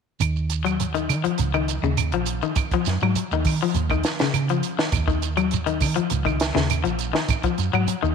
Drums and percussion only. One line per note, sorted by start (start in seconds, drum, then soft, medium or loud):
0.20 closed hi-hat medium
0.20 claves medium
0.20 shekere medium
0.36 shekere soft
0.50 closed hi-hat soft
0.50 shekere medium
0.66 closed hi-hat soft
0.66 claves medium
0.66 shekere soft
0.80 closed hi-hat medium
0.80 shekere medium
0.95 closed hi-hat soft
0.95 shekere soft
1.09 closed hi-hat soft
1.09 claves medium
1.09 shekere medium
1.25 closed hi-hat soft
1.25 shekere soft
1.38 closed hi-hat medium
1.38 shekere medium
1.54 claves soft
1.54 shekere soft
1.68 closed hi-hat soft
1.68 shekere medium
1.83 shekere soft
1.97 closed hi-hat medium
1.97 claves medium
1.97 shekere medium
2.12 closed hi-hat soft
2.12 shekere soft
2.26 closed hi-hat soft
2.26 shekere medium
2.42 shekere soft
2.56 kick medium
2.56 closed hi-hat medium
2.56 claves medium
2.56 shekere medium
2.71 kick medium
2.71 closed hi-hat soft
2.71 shekere soft
2.85 snare soft
2.85 closed hi-hat soft
2.85 shekere medium
3.00 claves medium
3.00 shekere soft
3.15 closed hi-hat medium
3.15 shekere medium
3.31 shekere soft
3.45 kick medium
3.45 open hi-hat medium
3.45 claves medium
3.45 shekere medium
3.61 shekere soft
3.74 closed hi-hat medium
3.74 shekere medium
3.90 kick medium
3.90 claves medium
3.90 shekere soft
4.04 snare medium
4.04 closed hi-hat soft
4.04 shekere medium
4.19 snare medium
4.19 closed hi-hat soft
4.19 shekere soft
4.34 closed hi-hat medium
4.34 claves medium
4.34 shekere medium
4.49 closed hi-hat soft
4.49 shekere soft
4.63 closed hi-hat soft
4.63 shekere medium
4.78 snare medium
4.78 shekere soft
4.92 kick medium
4.92 closed hi-hat medium
4.92 claves medium
4.92 shekere medium
5.08 kick medium
5.08 shekere soft
5.22 closed hi-hat soft
5.22 shekere medium
5.37 closed hi-hat soft
5.37 claves medium
5.37 shekere soft
5.51 closed hi-hat medium
5.51 shekere medium
5.67 closed hi-hat soft
5.67 shekere soft
5.80 kick medium
5.80 open hi-hat medium
5.80 claves medium
5.80 shekere medium
5.96 closed hi-hat soft
5.96 shekere soft
6.10 closed hi-hat medium
6.10 shekere medium
6.26 kick medium
6.26 claves medium
6.26 shekere soft
6.40 snare medium
6.40 closed hi-hat soft
6.40 shekere medium
6.56 snare medium
6.56 shekere soft
6.70 closed hi-hat medium
6.70 claves medium
6.70 shekere medium
6.85 closed hi-hat soft
6.85 shekere soft
6.99 closed hi-hat soft
6.99 shekere medium
7.15 snare medium
7.15 shekere soft
7.29 kick medium
7.29 closed hi-hat medium
7.29 claves medium
7.29 shekere medium
7.43 kick medium
7.43 closed hi-hat soft
7.43 shekere soft
7.58 closed hi-hat soft
7.58 shekere medium
7.73 claves medium
7.73 shekere soft
7.87 closed hi-hat medium
7.87 shekere medium
8.04 shekere soft